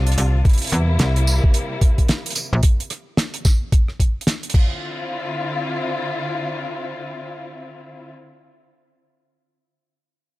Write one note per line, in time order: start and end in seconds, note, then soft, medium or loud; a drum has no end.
0.00 0.16 C2 loud
0.00 0.41 D3 medium
0.00 0.41 C4 medium
0.00 0.43 D4 medium
0.00 0.41 F4 medium
0.07 closed hi-hat medium
0.12 closed hi-hat medium
0.18 0.43 C2 medium
0.18 closed hi-hat medium
0.18 tambourine medium
0.45 2.61 C3 medium
0.45 2.61 G3 medium
0.45 2.61 A#3 medium
0.45 2.61 E4 medium
0.45 kick loud
0.45 closed hi-hat soft
0.49 closed hi-hat soft
0.53 closed hi-hat medium
0.58 closed hi-hat medium
0.62 closed hi-hat medium
0.64 closed hi-hat medium
0.67 closed hi-hat medium
0.70 0.98 E2 loud
0.70 cross-stick medium
0.70 closed hi-hat medium
0.73 closed hi-hat medium
0.99 1.41 C2 loud
0.99 snare loud
0.99 closed hi-hat medium
1.16 closed hi-hat medium
1.27 tambourine medium
1.44 kick loud
1.54 closed hi-hat medium
1.81 kick loud
1.81 closed hi-hat medium
1.98 kick medium
1.98 closed hi-hat medium
2.09 snare loud
2.09 closed hi-hat medium
2.26 closed hi-hat medium
2.30 closed hi-hat medium
2.35 cross-stick soft
2.35 closed hi-hat medium
2.35 tambourine medium
2.53 2.62 A#1 loud
2.63 kick loud
2.63 closed hi-hat medium
2.80 closed hi-hat medium
2.90 cross-stick medium
2.90 closed hi-hat medium
3.17 snare loud
3.17 closed hi-hat medium
3.34 closed hi-hat medium
3.45 kick loud
3.45 snare soft
3.45 tambourine medium
3.72 kick loud
3.72 closed hi-hat medium
3.88 cross-stick soft
4.00 kick medium
4.00 closed hi-hat medium
4.21 closed hi-hat medium
4.27 snare loud
4.27 closed hi-hat loud
4.43 closed hi-hat medium
4.50 closed hi-hat medium
4.54 8.10 D3 medium
4.54 8.11 C4 medium
4.54 8.10 E4 medium
4.54 8.10 F4 medium
4.54 kick loud
4.54 crash medium